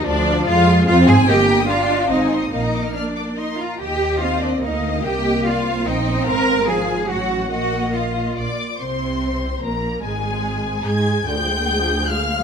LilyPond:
<<
  \new Staff \with { instrumentName = "Violin section" } { \time 3/4 \key bes \mixolydian \tempo 4 = 145 << { d'4 f'4 f'8 aes'8 | r2. | r4 f'''8 d'''8 c'''8 bes''8 | r2. |
r2. | r2. | r2 d'''4 | c'''2 bes''4 |
aes''2 aes'''4 | g'''2 f'''4 | } \\ { r2. | ees''16 g''16 bes''16 ees'''16 bes''16 g''16 ees''16 g''16 f''16 aes''16 c'''16 ees'''16 | f''16 bes''16 d'''16 f'''16 r2 | ees''2 f''4 |
ees''4 d''8 c''8 g''4 | f''8 f''4. ges''4 | ees''2 d''8 r8 | r2. |
r2. | r2. | } >> }
  \new Staff \with { instrumentName = "Violin section" } { \time 3/4 \key bes \mixolydian d''4 f''4 f''8 aes''8 | g''4 f''4 ees''4 | ees''4 d''4 ees''8 f''8 | g''4 f''8 d''8 ees''4 |
g''4 f''4 ees''4 | bes''4 aes''4 ges''4 | ges''4 f''4 d''4 | c''2 bes'4 |
aes'2 aes''4 | g''2 f''4 | }
  \new Staff \with { instrumentName = "Cello section" } { \time 3/4 \key bes \mixolydian d'4 f'4 f'8 aes'8 | g'4 f'4 ees'4 | ees'4 d'4 ees'8 f'8 | g'4 f'8 d'8 ees'4 |
g'4 f'4 ees'4 | bes'4 aes'4 ges'4 | ges'4 f'4. r8 | c2 bes,4 |
aes,2 aes4 | d,2. | }
  \new Staff \with { instrumentName = "Viola section" } { \time 3/4 \key bes \mixolydian << { f4 aes4 c'4 | bes4 d'4 c'4 | bes2~ bes8 r8 | r4 c'4 bes4~ |
bes2 c'4~ | c'4 f4 ges4 | bes2~ bes8 r8 | c'2 bes4 |
aes2 aes'4 | aes'2. | } \\ { r2. | r2. | r2. | r2. |
r2. | r2. | r2. | r2. |
r2. | d16 f16 aes16 bes16 aes16 f16 d16 f16 aes16 bes16 aes16 f16 | } >> }
  \new Staff \with { instrumentName = "Double bass section" } { \clef bass \time 3/4 \key bes \mixolydian d,4 f,4 f,8 aes,8 | g,,4 r4 aes,,4 | bes,,4 r2 | ees,2 d,4 |
c,2 bes,,4 | aes,,2 a,,4 | bes,,2 bes,,8 r8 | c,2 bes,,4 |
aes,,2 aes,4 | d,2. | }
>>